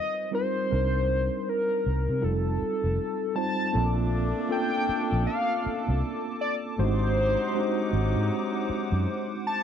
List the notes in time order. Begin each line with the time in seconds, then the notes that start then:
Already playing: D#5
0.31 G3 C4 D#4 F4 A#4 C5
0.70 C2 G3 C4 D4 D#4 A#4
1.49 A#4
1.86 C2
2.09 C3
2.21 F1 G3 C4 D#4 F4 A4
2.62 muted fingered electric bass stroke
2.84 F1
3.35 G3 C4 D#4 F4 C5 A5
3.72 A#1 A#2 A3 A#3 C4 D4 F4 A4 A5 D6
4.49 A#3 C4 C#4 F4 A4 G5
4.56 D4
4.89 muted fingered electric bass stroke
5.12 A#1
5.27 F5
5.66 muted fingered electric bass stroke
5.88 C2
6.41 D5
6.77 G#1 C3 F#3 G#3 B3 D4 D#4 F#4 C5 F#5 D6
6.85 C4
7.55 G#3 C4 D4 D#4 F#4
7.93 G#1
8.16 G#2
8.70 muted fingered electric bass stroke
8.92 F#2
9.47 A5